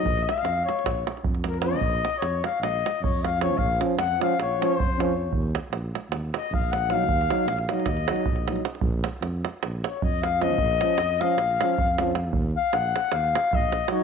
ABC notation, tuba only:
X:1
M:9/8
L:1/8
Q:3/8=103
K:Bbm
V:1 name="Tuba" clef=bass
B,,,2 F,,2 B,,,2 F,,3 | B,,,2 F,,2 B,,,2 F,,3 | B,,,2 F,,2 B,,,2 F,,3 | E,,2 B,,,2 E,,2 B,,,3 |
E,,2 B,,,2 E,,2 B,,,3 | B,,,2 F,,2 B,,,2 F,,3 | B,,,2 F,,2 B,,,2 F,,3 | E,,2 B,,,2 E,,2 B,,,3 |]